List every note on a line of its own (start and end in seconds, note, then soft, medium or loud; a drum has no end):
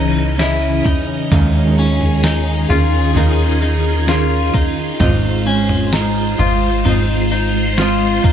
0.00 0.82 C#2 loud
0.00 1.28 C#3 medium
0.00 1.29 E3 loud
0.00 1.13 G#3 medium
0.00 0.38 C#4 medium
0.00 4.98 C#4 medium
0.00 0.40 D#4 medium
0.00 0.39 E4 medium
0.00 0.40 G#4 medium
0.00 1.74 C5 medium
0.00 0.41 D#5 medium
0.00 1.28 D#5 medium
0.38 1.32 C#4 medium
0.38 0.86 E4 medium
0.38 1.32 E4 medium
0.38 1.33 G#4 medium
0.38 1.33 D#5 medium
0.38 snare loud
0.38 tambourine medium
0.85 1.31 D#4 medium
0.85 kick loud
0.85 floor tom medium
0.85 tambourine medium
1.31 2.66 D#2 loud
1.31 2.72 D#3 medium
1.31 4.98 D#3 medium
1.31 2.73 G#3 medium
1.31 2.71 C#4 medium
1.31 1.78 D#4 medium
1.31 8.33 F4 medium
1.31 4.98 G#4 medium
1.31 2.71 G#4 medium
1.31 2.69 A#4 medium
1.31 2.69 F5 loud
1.31 kick loud
1.31 floor tom loud
1.31 tambourine medium
1.79 2.24 C#4 medium
2.01 floor tom medium
2.24 2.70 D#4 medium
2.24 snare loud
2.24 tambourine loud
2.68 3.14 D#2 loud
2.68 3.16 F4 medium
2.68 5.42 G#4 soft
2.68 3.15 G#4 soft
2.68 3.16 A#4 soft
2.68 3.16 F5 medium
2.68 floor tom medium
2.68 tambourine medium
2.72 3.13 C#4 soft
3.15 4.51 D#2 loud
3.15 4.06 C#4 medium
3.15 3.61 D#4 medium
3.15 4.08 G#4 medium
3.15 4.08 A#4 medium
3.15 4.10 F5 medium
3.15 floor tom medium
3.15 tambourine medium
3.62 4.09 D#4 medium
3.62 tambourine medium
4.07 5.00 C#4 medium
4.07 4.55 F4 medium
4.07 5.01 G#4 medium
4.07 5.01 A#4 medium
4.07 5.02 F5 medium
4.07 snare loud
4.07 tambourine medium
4.54 4.99 D#4 medium
4.54 kick loud
4.54 floor tom medium
4.54 tambourine medium
5.00 6.36 G#1 loud
5.00 8.33 G#3 medium
5.00 6.85 C4 medium
5.00 5.46 D#4 medium
5.00 6.42 F4 medium
5.00 6.40 C5 medium
5.00 8.33 C5 medium
5.00 6.38 D#5 medium
5.00 kick loud
5.00 floor tom loud
5.00 tambourine medium
5.47 5.93 C#4 medium
5.69 floor tom medium
5.93 6.40 D#4 medium
5.93 snare loud
5.93 tambourine loud
6.39 6.84 G#1 loud
6.39 6.86 F4 medium
6.39 6.85 F4 soft
6.39 6.86 C5 medium
6.39 6.85 D#5 medium
6.39 floor tom medium
6.39 tambourine medium
6.85 8.20 G#1 loud
6.85 7.77 C4 medium
6.85 7.31 D#4 medium
6.85 7.79 F4 medium
6.85 7.80 C5 medium
6.85 7.81 D#5 medium
6.85 floor tom medium
6.85 tambourine medium
7.31 7.78 D#4 medium
7.31 tambourine medium
7.78 8.33 C4 medium
7.78 8.24 F4 medium
7.78 8.33 F4 medium
7.78 8.33 C5 medium
7.78 8.33 D#5 medium
7.78 snare loud
7.78 tambourine medium
8.24 8.33 D#4 medium
8.24 kick loud
8.24 floor tom medium
8.24 tambourine medium